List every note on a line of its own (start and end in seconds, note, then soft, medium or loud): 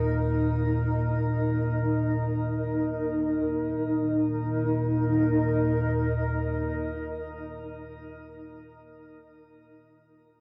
0.00 3.43 D#2 medium
0.00 3.44 A#2 medium
0.00 3.42 D#4 medium
0.00 3.44 A#4 medium
0.00 3.45 D#5 medium
3.43 7.80 D#2 medium
3.43 7.81 A#2 medium
3.43 7.79 D#4 medium
3.61 7.96 A#4 medium
3.77 8.12 D#5 medium